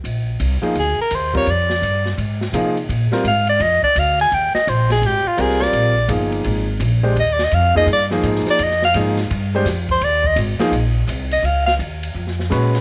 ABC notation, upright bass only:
X:1
M:4/4
L:1/8
Q:"Swing" 1/4=168
K:Bbmix
V:1 name="Upright bass" clef=bass
B,,,2 C,, z D,, z E,,2 | F,,2 G,,2 A,,2 C,2 | B,, z A,,2 F,, z D,,2 | E,, z B,,,2 A,,, z C,,2 |
B,,,2 G,,,2 A,,,2 B,,,2 | E,,2 F,,2 G,,2 A,, z | F,,2 A,,2 G,,2 F,,2 | E,,2 A,,, z B,,,2 C,,2 |
[K:Dbmix] D,,2 E,,2 F,,2 B,,2 |]